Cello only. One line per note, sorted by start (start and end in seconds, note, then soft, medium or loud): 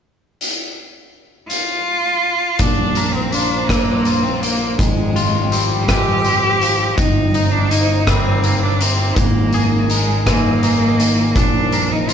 1.49 2.61 F4 medium
2.60 3.15 D4 medium
3.14 3.33 C4 medium
3.31 3.69 D4 medium
3.67 4.25 A#3 medium
4.23 4.42 C4 medium
4.41 4.77 A#3 medium
4.77 5.53 G#3 medium
5.51 5.90 G3 medium
5.88 6.99 G4 medium
6.98 7.53 D#4 medium
7.51 7.72 D4 medium
7.70 8.08 D#4 medium
8.07 8.65 C4 medium
8.63 8.83 D4 medium
8.81 9.18 C4 medium
9.17 9.89 A#3 medium
9.91 10.24 G#3 medium
10.27 11.38 A#3 medium
11.36 11.93 D4 medium
11.92 12.11 D#4 medium
12.10 12.13 F4 medium